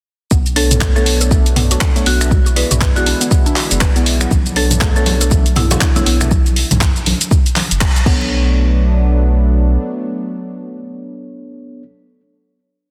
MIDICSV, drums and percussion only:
0, 0, Header, 1, 3, 480
1, 0, Start_track
1, 0, Tempo, 500000
1, 300, Time_signature, 4, 2, 24, 8
1, 12391, End_track
2, 0, Start_track
2, 0, Title_t, "Djembe"
2, 4623, Note_on_c, 9, 62, 114
2, 4719, Note_off_c, 9, 62, 0
2, 4861, Note_on_c, 9, 63, 97
2, 4957, Note_off_c, 9, 63, 0
2, 5346, Note_on_c, 9, 63, 75
2, 5442, Note_off_c, 9, 63, 0
2, 5482, Note_on_c, 9, 62, 113
2, 5578, Note_off_c, 9, 62, 0
2, 5720, Note_on_c, 9, 63, 71
2, 5816, Note_off_c, 9, 63, 0
2, 12391, End_track
3, 0, Start_track
3, 0, Title_t, "Drums"
3, 299, Note_on_c, 9, 36, 124
3, 301, Note_on_c, 9, 82, 67
3, 395, Note_off_c, 9, 36, 0
3, 397, Note_off_c, 9, 82, 0
3, 442, Note_on_c, 9, 42, 32
3, 443, Note_on_c, 9, 82, 38
3, 538, Note_off_c, 9, 42, 0
3, 539, Note_off_c, 9, 82, 0
3, 539, Note_on_c, 9, 46, 95
3, 635, Note_off_c, 9, 46, 0
3, 683, Note_on_c, 9, 42, 57
3, 683, Note_on_c, 9, 45, 89
3, 684, Note_on_c, 9, 82, 79
3, 779, Note_off_c, 9, 42, 0
3, 779, Note_off_c, 9, 45, 0
3, 779, Note_on_c, 9, 36, 122
3, 780, Note_off_c, 9, 82, 0
3, 781, Note_on_c, 9, 26, 111
3, 781, Note_on_c, 9, 39, 94
3, 781, Note_on_c, 9, 45, 89
3, 782, Note_on_c, 9, 82, 67
3, 875, Note_off_c, 9, 36, 0
3, 877, Note_off_c, 9, 26, 0
3, 877, Note_off_c, 9, 39, 0
3, 877, Note_off_c, 9, 45, 0
3, 878, Note_off_c, 9, 82, 0
3, 923, Note_on_c, 9, 42, 30
3, 924, Note_on_c, 9, 82, 40
3, 1019, Note_off_c, 9, 42, 0
3, 1020, Note_off_c, 9, 82, 0
3, 1020, Note_on_c, 9, 46, 93
3, 1116, Note_off_c, 9, 46, 0
3, 1161, Note_on_c, 9, 42, 54
3, 1163, Note_on_c, 9, 82, 81
3, 1257, Note_off_c, 9, 42, 0
3, 1259, Note_off_c, 9, 82, 0
3, 1259, Note_on_c, 9, 36, 117
3, 1262, Note_on_c, 9, 82, 64
3, 1355, Note_off_c, 9, 36, 0
3, 1358, Note_off_c, 9, 82, 0
3, 1403, Note_on_c, 9, 42, 45
3, 1404, Note_on_c, 9, 82, 39
3, 1499, Note_off_c, 9, 42, 0
3, 1500, Note_off_c, 9, 82, 0
3, 1500, Note_on_c, 9, 45, 89
3, 1500, Note_on_c, 9, 46, 96
3, 1596, Note_off_c, 9, 45, 0
3, 1596, Note_off_c, 9, 46, 0
3, 1642, Note_on_c, 9, 42, 56
3, 1643, Note_on_c, 9, 82, 80
3, 1738, Note_off_c, 9, 42, 0
3, 1739, Note_off_c, 9, 82, 0
3, 1739, Note_on_c, 9, 36, 121
3, 1740, Note_on_c, 9, 26, 118
3, 1740, Note_on_c, 9, 39, 103
3, 1741, Note_on_c, 9, 82, 67
3, 1835, Note_off_c, 9, 36, 0
3, 1836, Note_off_c, 9, 26, 0
3, 1836, Note_off_c, 9, 39, 0
3, 1837, Note_off_c, 9, 82, 0
3, 1882, Note_on_c, 9, 42, 45
3, 1883, Note_on_c, 9, 82, 40
3, 1978, Note_off_c, 9, 42, 0
3, 1979, Note_off_c, 9, 82, 0
3, 1980, Note_on_c, 9, 46, 95
3, 2076, Note_off_c, 9, 46, 0
3, 2123, Note_on_c, 9, 26, 64
3, 2123, Note_on_c, 9, 42, 53
3, 2124, Note_on_c, 9, 82, 77
3, 2219, Note_off_c, 9, 26, 0
3, 2219, Note_off_c, 9, 42, 0
3, 2219, Note_on_c, 9, 36, 127
3, 2220, Note_off_c, 9, 82, 0
3, 2222, Note_on_c, 9, 82, 70
3, 2315, Note_off_c, 9, 36, 0
3, 2318, Note_off_c, 9, 82, 0
3, 2365, Note_on_c, 9, 42, 30
3, 2366, Note_on_c, 9, 82, 40
3, 2461, Note_off_c, 9, 42, 0
3, 2461, Note_on_c, 9, 46, 97
3, 2462, Note_off_c, 9, 82, 0
3, 2557, Note_off_c, 9, 46, 0
3, 2603, Note_on_c, 9, 42, 56
3, 2603, Note_on_c, 9, 45, 95
3, 2604, Note_on_c, 9, 82, 85
3, 2699, Note_off_c, 9, 42, 0
3, 2699, Note_off_c, 9, 45, 0
3, 2699, Note_on_c, 9, 36, 124
3, 2700, Note_off_c, 9, 82, 0
3, 2703, Note_on_c, 9, 26, 108
3, 2703, Note_on_c, 9, 39, 93
3, 2703, Note_on_c, 9, 45, 92
3, 2704, Note_on_c, 9, 82, 68
3, 2795, Note_off_c, 9, 36, 0
3, 2799, Note_off_c, 9, 26, 0
3, 2799, Note_off_c, 9, 39, 0
3, 2799, Note_off_c, 9, 45, 0
3, 2800, Note_off_c, 9, 82, 0
3, 2844, Note_on_c, 9, 42, 30
3, 2846, Note_on_c, 9, 82, 42
3, 2940, Note_off_c, 9, 42, 0
3, 2941, Note_on_c, 9, 46, 90
3, 2942, Note_off_c, 9, 82, 0
3, 3037, Note_off_c, 9, 46, 0
3, 3083, Note_on_c, 9, 42, 54
3, 3084, Note_on_c, 9, 82, 82
3, 3179, Note_off_c, 9, 42, 0
3, 3180, Note_off_c, 9, 82, 0
3, 3180, Note_on_c, 9, 36, 127
3, 3181, Note_on_c, 9, 82, 71
3, 3276, Note_off_c, 9, 36, 0
3, 3277, Note_off_c, 9, 82, 0
3, 3324, Note_on_c, 9, 42, 42
3, 3325, Note_on_c, 9, 82, 41
3, 3420, Note_off_c, 9, 42, 0
3, 3421, Note_off_c, 9, 82, 0
3, 3421, Note_on_c, 9, 39, 50
3, 3421, Note_on_c, 9, 46, 92
3, 3517, Note_off_c, 9, 39, 0
3, 3517, Note_off_c, 9, 46, 0
3, 3563, Note_on_c, 9, 42, 54
3, 3564, Note_on_c, 9, 82, 82
3, 3659, Note_off_c, 9, 42, 0
3, 3660, Note_off_c, 9, 82, 0
3, 3660, Note_on_c, 9, 26, 112
3, 3660, Note_on_c, 9, 36, 127
3, 3660, Note_on_c, 9, 39, 98
3, 3661, Note_on_c, 9, 82, 72
3, 3756, Note_off_c, 9, 26, 0
3, 3756, Note_off_c, 9, 36, 0
3, 3756, Note_off_c, 9, 39, 0
3, 3757, Note_off_c, 9, 82, 0
3, 3802, Note_on_c, 9, 42, 45
3, 3803, Note_on_c, 9, 82, 43
3, 3898, Note_off_c, 9, 42, 0
3, 3899, Note_off_c, 9, 82, 0
3, 3900, Note_on_c, 9, 46, 92
3, 3996, Note_off_c, 9, 46, 0
3, 4041, Note_on_c, 9, 26, 63
3, 4041, Note_on_c, 9, 42, 55
3, 4043, Note_on_c, 9, 82, 78
3, 4137, Note_off_c, 9, 26, 0
3, 4137, Note_off_c, 9, 42, 0
3, 4139, Note_off_c, 9, 82, 0
3, 4139, Note_on_c, 9, 63, 109
3, 4140, Note_on_c, 9, 36, 127
3, 4141, Note_on_c, 9, 82, 73
3, 4235, Note_off_c, 9, 63, 0
3, 4236, Note_off_c, 9, 36, 0
3, 4237, Note_off_c, 9, 82, 0
3, 4281, Note_on_c, 9, 42, 31
3, 4283, Note_on_c, 9, 82, 43
3, 4288, Note_on_c, 9, 62, 56
3, 4377, Note_off_c, 9, 42, 0
3, 4378, Note_on_c, 9, 46, 93
3, 4379, Note_off_c, 9, 82, 0
3, 4384, Note_off_c, 9, 62, 0
3, 4474, Note_off_c, 9, 46, 0
3, 4518, Note_on_c, 9, 63, 99
3, 4522, Note_on_c, 9, 42, 55
3, 4522, Note_on_c, 9, 45, 97
3, 4523, Note_on_c, 9, 82, 85
3, 4614, Note_off_c, 9, 63, 0
3, 4618, Note_off_c, 9, 42, 0
3, 4618, Note_off_c, 9, 45, 0
3, 4618, Note_on_c, 9, 26, 107
3, 4618, Note_on_c, 9, 39, 94
3, 4618, Note_on_c, 9, 45, 96
3, 4619, Note_off_c, 9, 82, 0
3, 4620, Note_on_c, 9, 36, 125
3, 4620, Note_on_c, 9, 82, 70
3, 4714, Note_off_c, 9, 26, 0
3, 4714, Note_off_c, 9, 39, 0
3, 4714, Note_off_c, 9, 45, 0
3, 4716, Note_off_c, 9, 36, 0
3, 4716, Note_off_c, 9, 82, 0
3, 4762, Note_on_c, 9, 42, 29
3, 4764, Note_on_c, 9, 82, 41
3, 4856, Note_on_c, 9, 62, 48
3, 4858, Note_off_c, 9, 42, 0
3, 4858, Note_on_c, 9, 63, 113
3, 4859, Note_on_c, 9, 46, 89
3, 4860, Note_off_c, 9, 82, 0
3, 4952, Note_off_c, 9, 62, 0
3, 4954, Note_off_c, 9, 63, 0
3, 4955, Note_off_c, 9, 46, 0
3, 5002, Note_on_c, 9, 42, 53
3, 5003, Note_on_c, 9, 82, 85
3, 5088, Note_on_c, 9, 62, 39
3, 5098, Note_off_c, 9, 42, 0
3, 5099, Note_off_c, 9, 82, 0
3, 5100, Note_on_c, 9, 36, 127
3, 5100, Note_on_c, 9, 82, 73
3, 5101, Note_on_c, 9, 63, 108
3, 5184, Note_off_c, 9, 62, 0
3, 5196, Note_off_c, 9, 36, 0
3, 5196, Note_off_c, 9, 82, 0
3, 5197, Note_off_c, 9, 63, 0
3, 5241, Note_on_c, 9, 42, 44
3, 5242, Note_on_c, 9, 82, 41
3, 5334, Note_on_c, 9, 62, 52
3, 5337, Note_off_c, 9, 42, 0
3, 5338, Note_off_c, 9, 82, 0
3, 5340, Note_on_c, 9, 45, 95
3, 5340, Note_on_c, 9, 46, 85
3, 5430, Note_off_c, 9, 62, 0
3, 5436, Note_off_c, 9, 45, 0
3, 5436, Note_off_c, 9, 46, 0
3, 5479, Note_on_c, 9, 64, 93
3, 5481, Note_on_c, 9, 63, 103
3, 5483, Note_on_c, 9, 42, 53
3, 5484, Note_on_c, 9, 82, 83
3, 5575, Note_off_c, 9, 64, 0
3, 5577, Note_off_c, 9, 63, 0
3, 5579, Note_off_c, 9, 42, 0
3, 5580, Note_off_c, 9, 82, 0
3, 5580, Note_on_c, 9, 36, 127
3, 5582, Note_on_c, 9, 26, 114
3, 5582, Note_on_c, 9, 39, 101
3, 5583, Note_on_c, 9, 82, 73
3, 5676, Note_off_c, 9, 36, 0
3, 5678, Note_off_c, 9, 26, 0
3, 5678, Note_off_c, 9, 39, 0
3, 5679, Note_off_c, 9, 82, 0
3, 5718, Note_on_c, 9, 63, 97
3, 5722, Note_on_c, 9, 62, 37
3, 5723, Note_on_c, 9, 42, 44
3, 5724, Note_on_c, 9, 82, 44
3, 5814, Note_off_c, 9, 63, 0
3, 5818, Note_off_c, 9, 62, 0
3, 5819, Note_off_c, 9, 42, 0
3, 5820, Note_off_c, 9, 82, 0
3, 5821, Note_on_c, 9, 46, 89
3, 5917, Note_off_c, 9, 46, 0
3, 5959, Note_on_c, 9, 62, 50
3, 5962, Note_on_c, 9, 26, 61
3, 5962, Note_on_c, 9, 42, 52
3, 5964, Note_on_c, 9, 82, 82
3, 5966, Note_on_c, 9, 64, 90
3, 6055, Note_off_c, 9, 62, 0
3, 6057, Note_on_c, 9, 63, 112
3, 6058, Note_off_c, 9, 26, 0
3, 6058, Note_off_c, 9, 42, 0
3, 6060, Note_off_c, 9, 82, 0
3, 6060, Note_on_c, 9, 36, 127
3, 6061, Note_on_c, 9, 82, 68
3, 6062, Note_off_c, 9, 64, 0
3, 6153, Note_off_c, 9, 63, 0
3, 6156, Note_off_c, 9, 36, 0
3, 6157, Note_off_c, 9, 82, 0
3, 6203, Note_on_c, 9, 42, 30
3, 6204, Note_on_c, 9, 82, 42
3, 6211, Note_on_c, 9, 62, 50
3, 6299, Note_off_c, 9, 42, 0
3, 6300, Note_off_c, 9, 82, 0
3, 6301, Note_on_c, 9, 46, 88
3, 6307, Note_off_c, 9, 62, 0
3, 6397, Note_off_c, 9, 46, 0
3, 6440, Note_on_c, 9, 64, 77
3, 6442, Note_on_c, 9, 42, 57
3, 6442, Note_on_c, 9, 45, 101
3, 6444, Note_on_c, 9, 82, 83
3, 6452, Note_on_c, 9, 63, 93
3, 6536, Note_off_c, 9, 64, 0
3, 6538, Note_off_c, 9, 42, 0
3, 6538, Note_off_c, 9, 45, 0
3, 6540, Note_off_c, 9, 82, 0
3, 6540, Note_on_c, 9, 26, 100
3, 6540, Note_on_c, 9, 36, 127
3, 6540, Note_on_c, 9, 39, 102
3, 6540, Note_on_c, 9, 45, 97
3, 6541, Note_on_c, 9, 82, 70
3, 6548, Note_off_c, 9, 63, 0
3, 6636, Note_off_c, 9, 26, 0
3, 6636, Note_off_c, 9, 36, 0
3, 6636, Note_off_c, 9, 39, 0
3, 6636, Note_off_c, 9, 45, 0
3, 6637, Note_off_c, 9, 82, 0
3, 6683, Note_on_c, 9, 42, 31
3, 6684, Note_on_c, 9, 82, 41
3, 6779, Note_off_c, 9, 42, 0
3, 6780, Note_off_c, 9, 82, 0
3, 6780, Note_on_c, 9, 46, 87
3, 6784, Note_on_c, 9, 62, 48
3, 6786, Note_on_c, 9, 63, 120
3, 6876, Note_off_c, 9, 46, 0
3, 6880, Note_off_c, 9, 62, 0
3, 6882, Note_off_c, 9, 63, 0
3, 6922, Note_on_c, 9, 42, 55
3, 6923, Note_on_c, 9, 82, 82
3, 7015, Note_on_c, 9, 62, 37
3, 7018, Note_off_c, 9, 42, 0
3, 7019, Note_off_c, 9, 82, 0
3, 7020, Note_on_c, 9, 36, 122
3, 7023, Note_on_c, 9, 82, 71
3, 7111, Note_off_c, 9, 62, 0
3, 7116, Note_off_c, 9, 36, 0
3, 7119, Note_off_c, 9, 82, 0
3, 7163, Note_on_c, 9, 42, 45
3, 7164, Note_on_c, 9, 82, 42
3, 7259, Note_off_c, 9, 42, 0
3, 7260, Note_off_c, 9, 82, 0
3, 7260, Note_on_c, 9, 39, 54
3, 7260, Note_on_c, 9, 46, 87
3, 7263, Note_on_c, 9, 63, 74
3, 7264, Note_on_c, 9, 62, 48
3, 7356, Note_off_c, 9, 39, 0
3, 7356, Note_off_c, 9, 46, 0
3, 7359, Note_off_c, 9, 63, 0
3, 7360, Note_off_c, 9, 62, 0
3, 7404, Note_on_c, 9, 42, 55
3, 7405, Note_on_c, 9, 82, 84
3, 7499, Note_on_c, 9, 36, 127
3, 7500, Note_off_c, 9, 42, 0
3, 7501, Note_off_c, 9, 82, 0
3, 7501, Note_on_c, 9, 26, 112
3, 7501, Note_on_c, 9, 39, 107
3, 7502, Note_on_c, 9, 82, 70
3, 7595, Note_off_c, 9, 36, 0
3, 7597, Note_off_c, 9, 26, 0
3, 7597, Note_off_c, 9, 39, 0
3, 7598, Note_off_c, 9, 82, 0
3, 7641, Note_on_c, 9, 62, 36
3, 7644, Note_on_c, 9, 42, 45
3, 7645, Note_on_c, 9, 82, 43
3, 7737, Note_off_c, 9, 62, 0
3, 7739, Note_on_c, 9, 36, 121
3, 7740, Note_off_c, 9, 42, 0
3, 7741, Note_off_c, 9, 82, 0
3, 7741, Note_on_c, 9, 49, 91
3, 7835, Note_off_c, 9, 36, 0
3, 7837, Note_off_c, 9, 49, 0
3, 7883, Note_on_c, 9, 62, 50
3, 7979, Note_off_c, 9, 62, 0
3, 12391, End_track
0, 0, End_of_file